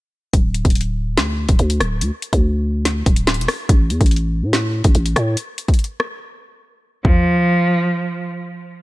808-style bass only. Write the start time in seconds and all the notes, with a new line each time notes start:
0.34 D1
0.65 D1
1.17 D2
1.49 D1
1.59 D2
1.80 D1
2.01 D2
2.33 D2
3.06 D1
3.38 E1
3.69 A1
3.90 E2
4.01 A1
4.43 A2
4.85 A1
4.95 A1
5.16 A2